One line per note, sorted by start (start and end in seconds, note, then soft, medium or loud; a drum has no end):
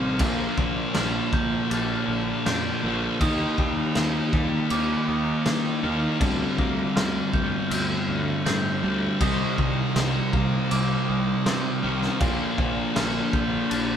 0.00 0.20 A1 medium
0.00 0.20 C3 medium
0.00 0.21 D#3 medium
0.00 0.19 G3 medium
0.00 1.83 A#3 medium
0.00 0.18 C4 medium
0.00 0.19 C4 medium
0.00 0.21 C4 medium
0.00 0.18 G4 medium
0.00 3.17 A#4 medium
0.00 0.58 F6 medium
0.19 0.44 A#1 loud
0.19 2.81 A#2 medium
0.19 2.08 A#2 medium
0.19 2.84 F3 loud
0.19 3.18 D4 medium
0.19 3.18 A4 medium
0.19 9.17 F5 medium
0.19 kick loud
0.19 crash medium
0.23 2.83 A#3 loud
0.58 0.81 A#1 medium
0.58 0.95 D3 medium
0.58 kick medium
0.94 1.19 A#1 medium
0.94 2.07 D3 medium
0.94 1.33 F6 medium
0.94 snare loud
0.94 crash medium
1.33 1.56 A#1 medium
1.33 2.08 G6 medium
1.33 kick loud
1.71 1.94 A#1 medium
1.71 2.46 D4 medium
1.71 crash medium
2.08 2.31 A#1 medium
2.08 2.82 D3 medium
2.46 2.70 F2 loud
2.46 3.25 D4 medium
2.46 3.21 G6 medium
2.46 snare loud
2.46 crash medium
2.83 3.07 A#1 medium
2.83 3.20 A#2 medium
2.83 3.21 D3 medium
2.83 3.22 F3 medium
2.83 3.22 A#3 medium
3.21 3.44 D#2 medium
3.21 5.81 D#3 medium
3.21 3.95 D#3 medium
3.21 5.84 A#3 loud
3.21 6.18 D#4 medium
3.21 5.82 D#4 medium
3.21 6.18 G4 medium
3.21 6.18 D#5 medium
3.21 3.96 D#6 medium
3.21 kick loud
3.21 crash medium
3.58 3.81 D#2 loud
3.58 4.33 G3 medium
3.58 kick medium
3.95 4.19 D#2 loud
3.95 5.08 D#3 medium
3.95 snare loud
3.95 crash medium
4.33 4.56 D#2 medium
4.33 6.58 G3 medium
4.33 kick loud
4.70 4.94 D#2 medium
4.70 5.08 D6 medium
4.70 crash medium
5.08 5.31 D#2 medium
5.08 5.82 D#3 medium
5.08 5.83 D#6 medium
5.46 5.69 D#3 loud
5.46 snare loud
5.46 crash medium
5.83 6.07 D#2 medium
5.83 6.21 D#3 medium
5.83 6.20 D#3 medium
5.83 6.22 A#3 medium
5.83 6.18 D#4 medium
5.83 6.59 F6 medium
6.20 6.44 D2 loud
6.20 8.81 G2 medium
6.20 6.95 D3 medium
6.20 8.82 D3 loud
6.20 8.82 G3 loud
6.20 12.17 C4 medium
6.20 9.18 A4 medium
6.20 13.97 A#4 medium
6.20 kick loud
6.20 crash medium
6.58 6.82 D2 medium
6.58 8.50 A#3 medium
6.58 kick medium
6.96 7.19 D2 loud
6.96 8.08 D3 medium
6.96 7.33 F6 medium
6.96 snare loud
6.96 crash medium
7.33 7.57 D2 medium
7.33 8.08 G6 medium
7.33 kick medium
7.70 7.94 D2 loud
7.70 8.46 C4 medium
7.70 crash medium
8.09 8.32 D2 medium
8.09 8.82 D3 medium
8.46 8.69 A2 loud
8.46 9.21 C4 medium
8.46 9.21 G6 medium
8.46 snare loud
8.46 crash medium
8.83 9.07 D2 loud
8.83 9.20 G2 medium
8.83 9.21 D3 medium
8.83 9.19 D3 medium
8.83 9.19 G3 medium
9.20 9.44 C2 loud
9.20 11.81 C3 medium
9.20 11.08 C3 medium
9.20 11.82 G3 loud
9.20 11.82 C4 loud
9.20 12.18 G4 medium
9.20 12.18 D#5 medium
9.20 9.96 D#6 loud
9.20 kick loud
9.20 crash medium
9.58 9.82 C2 loud
9.58 9.95 D#3 medium
9.58 kick loud
9.96 10.19 C2 loud
9.96 11.06 D#3 medium
9.96 snare loud
9.96 crash medium
10.33 10.57 C2 loud
10.33 13.83 A#3 medium
10.33 kick loud
10.70 10.95 C2 medium
10.70 11.45 C4 medium
10.70 11.09 D6 medium
10.70 crash medium
11.07 11.32 C2 loud
11.07 11.82 D#3 medium
11.07 11.83 D#6 medium
11.46 11.69 C3 loud
11.46 12.21 C4 medium
11.46 snare loud
11.46 crash medium
11.83 12.07 C2 medium
11.83 12.20 C3 medium
11.83 12.21 D#3 medium
11.83 12.19 G3 medium
11.83 12.19 C4 loud
11.83 12.58 F6 medium
12.02 snare soft
12.20 12.44 A#1 loud
12.20 13.97 A#2 medium
12.20 13.97 F3 loud
12.20 13.97 A#3 loud
12.20 13.97 D4 medium
12.20 13.97 A4 medium
12.20 13.97 F5 medium
12.20 kick loud
12.20 crash medium
12.58 12.82 A#1 loud
12.58 12.94 D3 medium
12.58 kick loud
12.95 13.19 A#1 loud
12.95 13.97 D3 medium
12.95 13.34 F6 medium
12.95 snare loud
12.95 crash medium
13.33 13.57 A#1 medium
13.33 13.97 G6 medium
13.33 kick loud
13.70 13.95 A#1 medium
13.70 13.97 D4 medium
13.70 crash medium